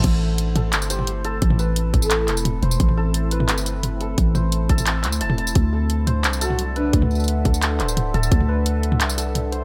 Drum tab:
CC |x-------------------------------|--------------------------------|--------------------------------|--------------------------------|
HH |x-------x---x---x---x---x---x---|x-------x---x---x---x---x---x---|x-------x---x---x---x---x---x---|x-------x---x---x---x---x---x---|
TB |------------------x-x-----------|----x---------x-------x-------x-|------------------x-x-----------|----x---------x-------x-------x-|
CP |----------------x---------------|----------------x---x-----------|----------------x---------------|----------------x---x-----------|
T2 |o-----------o---------o---------|--o---------o-----------o-------|--o-----------o---------o-------|----o---------o-----------o-----|
BD |o-------------------------------|o-----------o-------------------|o-------------------------------|o-----------o-------------------|

CC |--------------------------------|--------------------------------|--------------------------------|
HH |x-------x---x---x---x---x---x---|x-------x---x---x---x---x---x---|x-------x---x---x---x---x---x---|
TB |------------------x-x-----------|----xxxx------x-------x-------x-|------------------x-x-----------|
CP |----------------x---------------|----------------x---x-----------|----------------x---------------|
T2 |o-----------o---------o---------|--o---------o-----------o-------|--o-----------o---------o-------|
BD |o-------------------------------|o-----------o-------------------|o-------------------------------|